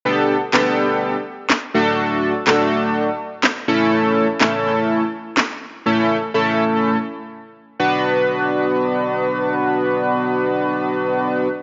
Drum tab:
CP |--x---x-|--x---x-|--x---x-|--------|
SD |--o---o-|--o---o-|--o---o-|--------|

CP |--------|--------|
SD |--------|--------|